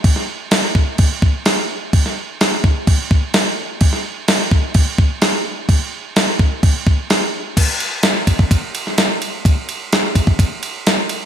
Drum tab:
CC |x---x---x---x---|x---x---x---x---|x---x---x---x---|x---x---x---x---|
RD |----------------|----------------|----------------|----------------|
SD |-o--o-------o---|-o--o-------o---|-o--o-------o---|----o-------o---|
BD |o-----o-o-o-----|o-----o-o-o-----|o-----o-o-o-----|o-----o-o-o-----|

CC |x---------------|----------------|
RD |x-x-x-x-x-x-x-x-|x-x-x-x-x-x-x-x-|
SD |----o------oo---|----o-------o---|
BD |o-----ooo-------|o-----ooo-------|